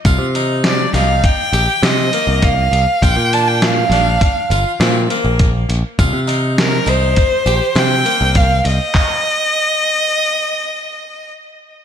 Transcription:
<<
  \new Staff \with { instrumentName = "Violin" } { \time 5/4 \key c \minor \tempo 4 = 101 r4 d''8 f''8 g''4 ees''4 f''4 | g''8 a''16 g''16 f''2 r2 | r4 bes'8 c''4. g''4 f''8 ees''8~ | ees''1 r4 | }
  \new Staff \with { instrumentName = "Harpsichord" } { \time 5/4 \key c \minor f'8 ees'4 ees'4 g'8 c'8 bes4 r8 | f'8 d'4 d'4 f'8 c'8 bes4 r8 | f'8 ees'4 ees'4 g'8 c'8 bes4 r8 | r1 r4 | }
  \new Staff \with { instrumentName = "Picked electric bass" } { \clef bass \time 5/4 \key c \minor c,16 c4~ c16 c,8 r8 bes,,16 r16 c8 r16 c,8. c,16 r16 | bes,,16 bes,4~ bes,16 bes,,8 r8 g,,16 r16 bes,8 r16 bes,,8. bes,,16 r16 | c,16 c4~ c16 c,8 r8 bes,,16 r16 c8 r16 c,8. c,16 r16 | r1 r4 | }
  \new DrumStaff \with { instrumentName = "Drums" } \drummode { \time 5/4 <hh bd>8 hh8 <hh sn>8 <hh sn>8 <hh bd>8 hh8 <hh sn>8 hh8 <hh bd>8 hh8 | <hh bd>8 hh8 <hh sn>8 <hh sn>8 <hh bd>8 hh8 <hh sn>8 hh8 <hh bd>8 hh8 | <hh bd>8 hh8 <hh sn>8 hh8 <hh bd>8 hh8 <hh sn>8 hh8 <hh bd>8 hh8 | <hc bd>4 r4 r4 r4 r4 | }
>>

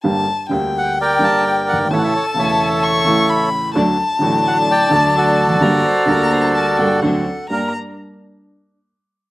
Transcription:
<<
  \new Staff \with { instrumentName = "Violin" } { \time 4/4 \key g \minor \tempo 4 = 129 a''4 g''2. | a''2 cis'''4 b''4 | a''1 | bes''4 bes''4 a''8 g''8 fis''4 |
bes''8 r2. r8 | }
  \new Staff \with { instrumentName = "Bandoneon" } { \time 4/4 \key g \minor << { r4. fis''8 g''8 a''8 g''8 fis''8 | e''32 fis''32 e''16 cis''8 e''2~ e''8 r8 | r4. fis''8 g''8 a''8 d''4~ | d''2. r4 |
bes'8 r2. r8 | } \\ { r2 <bes' d''>2 | <a' cis''>4 <a' cis''>2~ <a' cis''>8 r8 | r2 d''4 <fis' a'>4~ | <fis' a'>2. r4 |
r1 | } >> }
  \new Staff \with { instrumentName = "Clarinet" } { \time 4/4 \key g \minor r1 | r1 | r1 | bes'8 c''8 bes'8 c''8 bes'8 a'4. |
bes'8 r2. r8 | }
  \new Staff \with { instrumentName = "String section" } { \time 4/4 \key g \minor r1 | r1 | <fis a d'>8 r8 <fis a d'>4. <fis a d'>4. | <g bes d'>8 r8 <g bes d'>4. <g bes d'>8 <fis c' d'>8 r8 |
<g bes d'>8 r2. r8 | }
  \new Staff \with { instrumentName = "Grand piano" } { \clef bass \time 4/4 \key g \minor << { <g,, g, d g bes g'>8 r8 <d, d g bes g'>4. <g,, g, d g bes g'>4. | <a,, a, cis e a e'>8 r8 <e,, e, cis e a e'>4. <a,, a, cis e a e'>4. | <d, d fis a fis'>8 r8 <a,, a, d fis a fis'>4. <d, d fis a fis'>4. | <g,, g, d g bes g'>8 r8 <d, d g bes d'>4. <g,, g, d g bes g'>8 <d, d a c' fis'>8 r8 |
<g, bes d' g'>8 r2. r8 | } \\ { r2. r8 r32 fis,,32 g,,32 aes,,32 | r1 | r2. r8 r32 e,32 f,32 fis,32 | r1 |
r1 | } >> }
>>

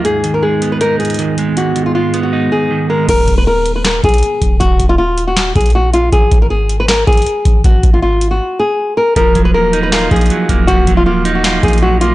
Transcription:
<<
  \new Staff \with { instrumentName = "Nylon-string guitar" } { \time 4/4 \key ees \minor \tempo 4 = 158 aes'8. bes'16 aes'8. ces''16 bes'8 aes'4. | ges'8. f'16 f'8. ges'8. aes'4 bes'8 | bes'8. ces''16 bes'8. ces''16 bes'8 aes'4. | ges'8. f'16 f'8. ges'8. aes'8 ges'8 f'8 |
aes'8. bes'16 aes'8. ces''16 bes'8 aes'4. | ges'8. f'16 f'8. ges'8. aes'4 bes'8 | bes'8. ces''16 bes'8. ces''16 bes'8 aes'4. | ges'8. f'16 f'8. ges'8. aes'8 ges'8 f'8 | }
  \new Staff \with { instrumentName = "Clean electric guitar" } { \clef bass \time 4/4 \key ees \minor aes,8 ees8 aes8 ces'8 ees'8 aes,8 ees8 aes8 | aes,8 ees8 aes8 ces'8 ees'4 ees8 aes8 | r1 | r1 |
r1 | r1 | f8 ges8 bes8 ees'8 f'8 f8 ges8 bes8 | f8 ges8 bes8 ees'8 f'8 f8 ges8 bes8 | }
  \new Staff \with { instrumentName = "Ambient pad" } { \clef bass \time 4/4 \key ees \minor <aes, ees ces' aes'>1~ | <aes, ees ces' aes'>1 | r1 | r1 |
r1 | r1 | r1 | r1 | }
  \new Staff \with { instrumentName = "808-style bass" } { \clef bass \time 4/4 \key ees \minor r1 | r1 | ees,,8 ees,,2 bes,,8 r8 ees,,8 | ees,,8 ees,,2 bes,,4. |
aes,,8 aes,,2 aes,,8 r8 aes,,8 | aes,,8 aes,,4. r2 | ees,,8 ees,,2 bes,,8 r8 ees,,8 | ees,,8 ees,,2 bes,,4. | }
  \new DrumStaff \with { instrumentName = "Drums" } \drummode { \time 4/4 hh8 hh8 r8 hh8 hh8 hh32 hh32 hh32 hh32 hh8 hh8 | hh8 hh8 r8 hh8 r4 r4 | <cymc hh bd>8 <hh bd>8 r8 hh8 <hc hh sn>8 <hh bd>32 hh32 hh32 hh32 hh8 <hh bd>8 | <hh bd>8 <hh bd>8 r8 hh8 <hc hh sn>8 <hh bd>32 hh32 hh32 hh32 r8 hh8 |
<hh bd>8 <hh bd>8 r8 hh8 <hc hh sn>8 <hh bd>32 hh32 hh32 hh32 hh8 <hh bd>8 | <hh bd>8 <hh bd>8 r8 hh8 r4 r4 | <hh bd>8 <hh bd>8 r8 hh8 <hc hh sn>8 <hh bd>32 hh32 hh32 hh32 hh8 <hh bd>8 | <hh bd>8 <hh bd>8 r8 hh8 <hc hh sn>8 <hh bd>32 hh32 hh32 hh32 r8 hh8 | }
>>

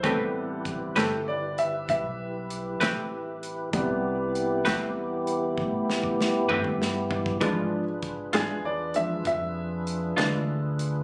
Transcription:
<<
  \new Staff \with { instrumentName = "Tonewheel organ" } { \time 12/8 \key a \minor \tempo 4. = 65 <e' g' b'>1. | <b e' g'>1. | <d' f' gis' b'>1. | }
  \new Staff \with { instrumentName = "Upright piano" } { \time 12/8 \key a \minor a'4 r8 a'8 d''8 e''8 e''2. | r1. | r4. gis'8 d''8 e''8 e''2. | }
  \new Staff \with { instrumentName = "Upright piano" } { \clef bass \time 12/8 \key a \minor <g b c'>1. | <c g b>1. | <f gis d'>8 r2 <f gis d'>8 r2. | }
  \new Staff \with { instrumentName = "Clean electric guitar" } { \time 12/8 \key a \minor <a c' g' b'>8 r4 <a c' g' b'>8 r2 r8 <a c' g' b'>8 r4 | r4. <a c' g' b'>8 r2 r8 <a c' g' b'>8 r4 | <e gis d' f'>8 r4 <e gis d' f'>8 r2 r8 <e gis d' f'>8 r4 | }
  \new Staff \with { instrumentName = "Upright bass" } { \clef bass \time 12/8 \key a \minor a,,4. g,,4. b,,4. a,,4. | c,4. e,4. a,4. g,4. | gis,4. e,4. f,4. d,4. | }
  \new DrumStaff \with { instrumentName = "Drums" } \drummode { \time 12/8 <hh bd>4 <hh bd>8 <hh sn>4 hh8 <hh bd>4 hh8 <hh sn>4 hh8 | <hh bd>4 hh8 <hh sn>4 hh8 bd8 sn16 bd16 sn8 toml16 toml16 sn8 tomfh16 bd16 | <hh bd>4 <hh bd>8 <hh sn>4 hh8 <hh bd>4 hh8 <hh sn>4 hh8 | }
>>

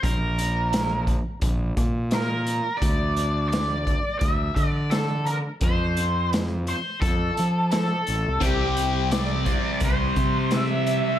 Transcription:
<<
  \new Staff \with { instrumentName = "Lead electric guitar" } { \time 4/4 \key c \mixolydian \tempo 4 = 86 bes'4. r4. bes'4 | d''4 d''4 e''8 d''8 a'8 bes'8 | c''4 r8 c''8 a'4 a'4 | g'4 d''4 c''4 e''4 | }
  \new Staff \with { instrumentName = "Distorted electric guitar" } { \clef bass \time 4/4 \key c \mixolydian r1 | r1 | r1 | <c g c'>4. <c g c'>2~ <c g c'>8 | }
  \new Staff \with { instrumentName = "Fingered electric bass" } { \clef bass \time 4/4 \key c \mixolydian bes,,2 bes,,8 bes,4. | d,2 d,8 d4. | f,2 f,8 f4 a,,16 c,16 | c,2 c,8 c4. | }
  \new DrumStaff \with { instrumentName = "Drums" } \drummode { \time 4/4 <hh bd>8 hh8 <hh sn>8 <hh bd>8 <hh bd>8 <hh bd>8 <hh sn>8 hh8 | <hh bd>8 hh8 <hh sn>8 <hh bd>8 <hh bd>8 <hh bd>8 <hh sn>8 hh8 | <hh bd>8 hh8 <hh sn>8 hh8 <hh bd>8 hh8 <hh sn>8 hh8 | <hh bd>8 hh8 <hh sn>8 <hh bd>8 <hh bd>8 <hh bd>8 <hh sn>8 hh8 | }
>>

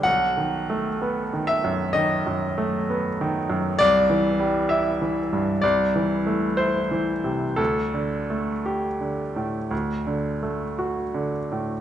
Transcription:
<<
  \new Staff \with { instrumentName = "Grand piano" } { \time 4/4 \key d \mixolydian \tempo 4 = 62 fis''4. e''8 dis''2 | d''4 e''4 d''4 c''4 | a'2.~ a'8 r8 | }
  \new Staff \with { instrumentName = "Grand piano" } { \clef bass \time 4/4 \key d \mixolydian \tuplet 3/2 { b,,8 dis8 a8 b8 dis8 fis,8 dis8 fis,8 a8 b8 dis8 fis,8 } | \tuplet 3/2 { c,8 e8 g8 e'8 e8 g,8 c,8 e8 a8 e'8 e8 c8 } | \tuplet 3/2 { d,8 d8 a8 g'8 d8 a,8 d,8 d8 a8 fis'8 d8 a,8 } | }
>>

